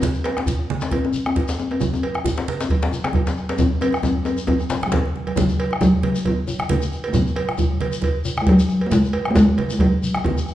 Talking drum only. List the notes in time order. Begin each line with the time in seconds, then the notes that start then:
4.86 F#3
4.92 D#3
5.37 F#3
5.81 F#3
6.27 D#3
6.72 C#3
7.08 C#3
7.14 A#2
8.42 G#3
8.49 F#3
8.86 A#3
8.92 G#3
9.31 A#3
9.36 G#3
9.73 G#3
9.81 F#3
10.25 D#3